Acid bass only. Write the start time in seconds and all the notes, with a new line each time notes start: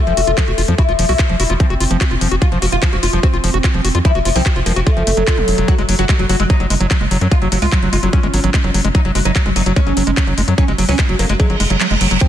0.07 F3
0.17 F#4
0.27 F4
0.38 F3
0.48 F#4
0.58 F4
0.68 F3
0.78 F#4
0.89 F4
0.99 F3
1.09 F#4
1.19 F4
1.29 F3
1.40 F#4
1.50 F4
1.60 F3
1.70 F#4
1.80 F4
1.91 F3
2.01 F#4
2.11 F4
2.21 F3
2.31 F#4
2.42 F4
2.52 F3
2.62 F#4
2.72 F4
2.82 F3
2.93 F#4
3.03 F4
3.13 F3
3.23 F#4
3.34 F4
3.44 F3
3.54 F#4
3.64 F4
3.74 F3
3.85 F#4
3.95 F4
4.05 F3
4.15 F#4
4.25 F4
4.36 F3
4.46 F#4
4.56 F4
4.66 F3
4.76 F#4
4.87 F4
4.97 F3
5.07 A3
5.17 F#3
5.27 F4
5.38 F3
5.48 F#3
5.58 F#3
5.78 G#3
5.89 F#3
5.99 F#3
6.09 G#3
6.19 F#3
6.29 F#3
6.40 G#3
6.50 F#3
6.60 F#3
6.70 G#3
6.80 F#3
6.91 F#3
7.01 G#3
7.11 F#3
7.21 F#3
7.32 G#3
7.42 F#3
7.52 F#3
7.62 G#3
7.72 F#3
7.83 F#3
7.93 G#3
8.03 F#3
8.13 F#3
8.23 G#3
8.34 F#3
8.44 F#3
8.54 G#3
8.64 F#3
8.74 F#3
8.85 G#3
8.95 F#3
9.05 F#3
9.15 G#3
9.25 F#3
9.36 F#3
9.46 G#3
9.56 F#3
9.66 F#3
9.76 G#3
9.87 F#3
9.97 F#3
10.07 G#3
10.17 F#3
10.27 F#3
10.38 G#3
10.48 F#3
10.58 F#3
10.68 G#3
10.78 F#3
10.89 F#3
10.99 G#3
11.09 F#3
11.19 F#3
11.29 G#3
11.40 F#3
11.50 F#3
11.60 G#3
11.70 F#3
11.80 F#3
11.91 G#3
12.01 F#3
12.11 F#3
12.21 F3